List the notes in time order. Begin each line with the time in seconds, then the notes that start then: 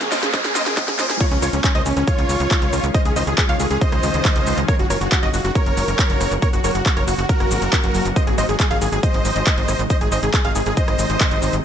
Already playing: noise sweep, riser
0.01 G#4, snare, closed hi-hat, shaker
0.12 C5 D#5, snare, open hi-hat, shaker
0.23 G#4, snare, closed hi-hat, shaker
0.34 C5 D#5, kick, snare, closed hi-hat, shaker
0.44 G#4, snare, closed hi-hat, shaker
0.55 C5 D#5, snare, open hi-hat, shaker
0.66 G#4, snare, closed hi-hat, shaker
0.77 C5 D#5, kick, snare, closed hi-hat, shaker
0.88 G#4, snare, closed hi-hat, shaker
0.99 C5 D#5, snare, open hi-hat, shaker
1.10 G#4, snare, closed hi-hat, shaker
1.21 F4 C#5, kick, closed hi-hat, crash, shaker
1.31 C#2 C#4, closed hi-hat
1.42 C#2 F4 C#5, cross-stick, open hi-hat, shaker
1.53 C#2 C#4, closed hi-hat, shaker
1.64 C#4, kick, clap, closed hi-hat, shaker
1.75 C#2 C5 D#5, closed hi-hat
1.86 C#2 C#4, open hi-hat, shaker
1.97 C#2 C#4, closed hi-hat, shaker
2.08 F4 C#5, kick, closed hi-hat, shaker
2.18 C#2, closed hi-hat
2.29 C#2, open hi-hat, shaker
2.40 C#2, closed hi-hat, shaker
2.51 kick, clap, closed hi-hat, shaker
2.62 C#2, closed hi-hat
2.73 C#2, cross-stick, open hi-hat, shaker
2.84 C#2, closed hi-hat, shaker
2.94 C5 D#5, kick, closed hi-hat, shaker
3.05 C#2 G#4, closed hi-hat, shaker
3.16 C#2 C5 D#5, open hi-hat, shaker
3.27 C#2 G#4, closed hi-hat, shaker
3.38 G#4, kick, clap, closed hi-hat, shaker
3.49 C#2 C#5 F5, closed hi-hat
3.60 C#2 G#4, open hi-hat, shaker
3.71 C#2 G#4, closed hi-hat, shaker
3.81 C5 D#5, kick, closed hi-hat, shaker
3.92 C#2, cross-stick, closed hi-hat
4.03 C#2, open hi-hat, shaker
4.14 C#2, closed hi-hat, shaker
4.25 kick, clap, closed hi-hat, shaker
4.36 C#2, closed hi-hat
4.47 C#2, open hi-hat, shaker
4.58 C#2, closed hi-hat, shaker
4.68 A#4 C#5, kick, closed hi-hat, shaker
4.79 F#1 F#4, closed hi-hat
4.90 F#1 A#4 C#5, cross-stick, open hi-hat, shaker
5.01 F#1 F#4, closed hi-hat, shaker
5.12 F#4, kick, clap, closed hi-hat, shaker
5.23 F#1 F#4 D#5, closed hi-hat
5.34 F#1 F#4, open hi-hat, shaker
5.44 F#1 F#4, closed hi-hat, shaker
5.55 A#4 C#5, kick, closed hi-hat, shaker
5.66 F#1, closed hi-hat
5.77 F#1, open hi-hat, shaker
5.88 F#1, closed hi-hat, shaker
5.99 kick, clap, closed hi-hat, shaker
6.10 F#1, closed hi-hat
6.21 F#1, cross-stick, open hi-hat, shaker
6.31 F#1, closed hi-hat, shaker
6.42 A#4 C#5, kick, closed hi-hat, shaker
6.53 F#1 F#4, closed hi-hat, shaker
6.64 F#1 A#4 C#5, open hi-hat, shaker
6.75 F#1 F#4, closed hi-hat, shaker
6.86 F#4, kick, clap, closed hi-hat, shaker
6.97 F#1 A#4 C#5, closed hi-hat
7.07 F#1 F#4, open hi-hat, shaker
7.18 F#1 F#4, closed hi-hat, shaker
7.29 F#4 A#4, kick, closed hi-hat, shaker
7.40 F#1, cross-stick, closed hi-hat
7.51 G#1, open hi-hat, shaker
7.62 F#1, closed hi-hat, shaker
7.73 kick, clap, closed hi-hat, shaker
7.84 F#1, closed hi-hat
7.95 F#1, open hi-hat, shaker
8.05 F#1, closed hi-hat, shaker
8.16 C5 D#5, kick, closed hi-hat, shaker
8.27 G#1 G#4, closed hi-hat
8.38 G#1 C5 D#5, cross-stick, open hi-hat, shaker
8.49 G#1 G#4, closed hi-hat, shaker
8.60 G#4, kick, clap, closed hi-hat, shaker
8.71 G#1 G#4 F5, closed hi-hat
8.81 G#1 G#4, open hi-hat, shaker
8.92 G#1 G#4, closed hi-hat, shaker
9.03 C5 D#5, kick, closed hi-hat, shaker
9.14 G#1, closed hi-hat
9.25 G#1, open hi-hat, shaker
9.36 G#1, closed hi-hat, shaker
9.47 kick, clap, closed hi-hat, shaker
9.58 G#1, closed hi-hat
9.68 G#1, cross-stick, open hi-hat, shaker
9.79 G#1, closed hi-hat, shaker
9.90 C5 D#5, kick, closed hi-hat, shaker
10.01 G#1 G#4, closed hi-hat, shaker
10.12 G#1 C5 D#5, open hi-hat, shaker
10.23 G#1 G#4, closed hi-hat, shaker
10.34 G#4, kick, clap, closed hi-hat, shaker
10.44 G#1 G#4 F5, closed hi-hat
10.55 G#1 G#4, open hi-hat, shaker
10.66 G#1 G#4, closed hi-hat, shaker
10.77 C5 D#5, kick, closed hi-hat, shaker
10.88 G#1, cross-stick, closed hi-hat
10.99 G#1, open hi-hat, shaker
11.10 G#1, closed hi-hat, shaker
11.21 kick, clap, closed hi-hat, shaker
11.31 G#1, closed hi-hat
11.42 G#1, open hi-hat, shaker
11.53 G#1, closed hi-hat, shaker